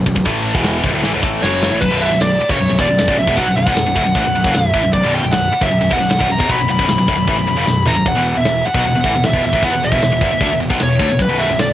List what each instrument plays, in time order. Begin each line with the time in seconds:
0.06 picked electric bass B0, distorted electric guitar B1 F#2, kick
0.15 picked electric bass B0, distorted electric guitar B1 F#2, kick
0.25 picked electric bass A1, distorted electric guitar A2 E3 A3, kick, open hi-hat
0.54 picked electric bass E1, distorted electric guitar E2 B2 E3, kick
0.64 snare, open hi-hat
0.84 picked electric bass B0, distorted electric guitar B1 F#2, kick
0.93 picked electric bass D1, distorted electric guitar D2 A2
1.03 picked electric bass A1, distorted electric guitar A2 E3, snare
1.13 picked electric bass B0, distorted electric guitar B1 F#2
1.22 picked electric bass A1, distorted electric guitar A2 E3 A3, kick
1.42 picked electric bass F#1, distorted electric guitar F#2 C#3 F#3, lead electric guitar C#5, snare
1.62 snare
1.70 picked electric bass A1, distorted electric guitar A2 E3
1.81 picked electric bass B0, distorted electric guitar B1 F#2, lead electric guitar B4, kick, crash
1.91 picked electric bass B0, distorted electric guitar B1 F#2 B2
2.01 lead electric guitar E5
2.11 picked electric bass B0, distorted electric guitar B1 F#2, snare
2.20 picked electric bass B0, distorted electric guitar B1 F#2, lead electric guitar D5, snare, crash
2.41 muted distorted electric guitar stroke, muted picked electric bass stroke
2.49 picked electric bass F#1, distorted electric guitar F#2 C#3, lead electric guitar C#5, kick
2.59 picked electric bass B0, distorted electric guitar B1 F#2, crash
2.70 picked electric bass B0, distorted electric guitar B1 F#2
2.79 picked electric bass E1, distorted electric guitar E2 B2, lead electric guitar D5, kick
2.89 picked electric bass B0, distorted electric guitar B1 F#2
2.98 picked electric bass B0, distorted electric guitar B1 F#2, snare, crash
3.08 picked electric bass B0, distorted electric guitar B1 F#2, kick
3.17 picked electric bass B0, distorted electric guitar B1 F#2, lead electric guitar E5
3.27 picked electric bass E1, distorted electric guitar E2 B2, kick
3.36 picked electric bass B1, distorted electric guitar B2 F#3, lead electric guitar F#5, kick, crash
3.47 picked electric bass B0, distorted electric guitar B1 F#2
3.57 picked electric bass B0, distorted electric guitar B1 F#2, lead electric guitar F#5
3.67 picked electric bass B0, distorted electric guitar B1 F#2, kick, snare
3.77 picked electric bass B0, distorted electric guitar B1 F#2, snare, crash
3.86 picked electric bass B0, distorted electric guitar B1 F#2
3.96 picked electric bass D1, distorted electric guitar D2 A2, kick
4.06 picked electric bass B0, distorted electric guitar B1 F#2
4.15 picked electric bass A1, distorted electric guitar A2 E3, kick, crash
4.25 picked electric bass B0, distorted electric guitar B1 F#2
4.35 picked electric bass B0, distorted electric guitar B1 F#2
4.44 picked electric bass F#1, distorted electric guitar F#2 C#3, kick
4.54 picked electric bass B0, distorted electric guitar B1 F#2, lead electric guitar E5, snare, crash
4.74 picked electric bass A1, distorted electric guitar A2 E3, kick
4.84 picked electric bass B0, distorted electric guitar B1 F#2
4.93 picked electric bass B0, distorted electric guitar B1 F#2, lead electric guitar D5, kick, crash
5.03 picked electric bass B0, distorted electric guitar B1 F#2 B2
5.14 lead electric guitar G5
5.23 picked electric bass B0, distorted electric guitar B1 F#2
5.32 picked electric bass B0, distorted electric guitar B1 F#2, lead electric guitar F#5, snare, crash
5.52 muted picked electric bass stroke, muted distorted electric guitar stroke
5.61 picked electric bass F#1, distorted electric guitar F#2 C#3, lead electric guitar E5, kick
5.71 picked electric bass B0, distorted electric guitar B1 F#2, crash
5.81 picked electric bass B0, distorted electric guitar B1 F#2
5.90 picked electric bass E1, distorted electric guitar E2 B2, lead electric guitar F#5, kick
6.00 picked electric bass B0, distorted electric guitar B1 F#2, snare
6.09 picked electric bass B0, distorted electric guitar B1 F#2, snare, crash
6.19 picked electric bass B0, distorted electric guitar B1 F#2, kick
6.29 picked electric bass B0, distorted electric guitar B1 F#2, lead electric guitar A#5
6.39 picked electric bass E1, distorted electric guitar E2 B2, kick
6.48 picked electric bass B1, distorted electric guitar B2 F#3, lead electric guitar B5, kick, crash
6.58 picked electric bass B0, distorted electric guitar B1 F#2
6.68 picked electric bass B0, distorted electric guitar B1 F#2, lead electric guitar B5
6.79 picked electric bass B0, distorted electric guitar B1 F#2, kick
6.88 picked electric bass B0, distorted electric guitar B1 F#2, snare, crash
6.98 picked electric bass B0, distorted electric guitar B1 F#2
7.08 picked electric bass D1, distorted electric guitar D2 A2, kick
7.17 picked electric bass B0, distorted electric guitar B1 F#2
7.27 picked electric bass A1, distorted electric guitar A2 E3, kick, crash
7.38 picked electric bass B0, distorted electric guitar B1 F#2
7.47 picked electric bass B0, distorted electric guitar B1 F#2
7.57 picked electric bass F#1, distorted electric guitar F#2 C#3
7.67 picked electric bass B0, distorted electric guitar B1 F#2, snare
7.86 picked electric bass A1, distorted electric guitar A2 E3, lead electric guitar A#5, floor tom
7.96 picked electric bass B0, distorted electric guitar B1 F#2
8.06 picked electric bass E1, distorted electric guitar E2 B2, lead electric guitar F#5, kick, crash
8.16 picked electric bass E1, distorted electric guitar E2 B2 E3
8.36 picked electric bass E1, distorted electric guitar E2 B2, lead electric guitar E5
8.45 picked electric bass E1, distorted electric guitar E2 B2, snare, crash
8.65 lead electric guitar F#5, muted picked electric bass stroke, muted distorted electric guitar stroke
8.74 picked electric bass B1, distorted electric guitar B2 F#3, kick
8.85 picked electric bass E1, distorted electric guitar E2 B2, lead electric guitar F#5, crash
8.95 picked electric bass E1, distorted electric guitar E2 B2
9.04 picked electric bass A1, distorted electric guitar A2 E3, kick
9.14 picked electric bass E1, distorted electric guitar E2 B2
9.24 picked electric bass E1, distorted electric guitar E2 B2, lead electric guitar E5, snare, crash
9.34 picked electric bass E1, distorted electric guitar E2 B2, kick
9.44 picked electric bass E1, distorted electric guitar E2 B2, lead electric guitar E5
9.53 picked electric bass A1, distorted electric guitar A2 E3, kick
9.63 picked electric bass E2, distorted electric guitar E3 B3, lead electric guitar F#5, kick, crash
9.73 picked electric bass E1, distorted electric guitar E2 B2
9.82 picked electric bass E1, distorted electric guitar E2 B2, lead electric guitar E5
9.92 picked electric bass E1, distorted electric guitar E2 B2, kick
10.02 picked electric bass E1, distorted electric guitar E2 B2, snare, crash
10.12 picked electric bass E1, distorted electric guitar E2 B2
10.21 picked electric bass G1, distorted electric guitar G2 D3, kick
10.32 picked electric bass E1, distorted electric guitar E2 B2
10.41 picked electric bass D2, distorted electric guitar D3 A3, kick, crash
10.51 picked electric bass E1, distorted electric guitar E2 B2
10.60 picked electric bass E1, distorted electric guitar E2 B2
10.70 picked electric bass B1, distorted electric guitar B2 F#3, kick
10.80 picked electric bass E1, distorted electric guitar E2 B2, lead electric guitar C#5, snare, crash
10.99 picked electric bass D2, distorted electric guitar D3 A3, kick
11.09 picked electric bass E1, distorted electric guitar E2 B2
11.19 picked electric bass B0, distorted electric guitar B1 F#2, lead electric guitar B4, kick, crash
11.29 picked electric bass B0, distorted electric guitar B1 F#2 B2
11.38 lead electric guitar E5
11.48 picked electric bass B0, distorted electric guitar B1 F#2, snare
11.58 picked electric bass B0, distorted electric guitar B1 F#2, lead electric guitar D5, snare, crash